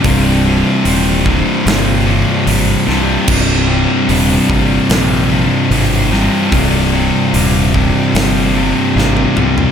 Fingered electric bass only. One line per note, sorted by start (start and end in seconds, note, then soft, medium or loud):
0.05 0.61 C1 loud
0.85 1.42 D#1 medium
1.66 2.23 G1 loud
2.46 2.75 G#1 loud
2.88 3.16 C2 medium
3.28 3.85 C1 loud
4.09 4.37 D#1 loud
4.49 4.78 G1 medium
4.89 5.46 A#1 medium
5.70 6.28 G#1 loud
6.52 7.09 C1 loud
7.33 7.91 D#1 medium
8.14 8.72 G1 medium
8.95 9.24 G#1 medium
9.37 9.65 C2 medium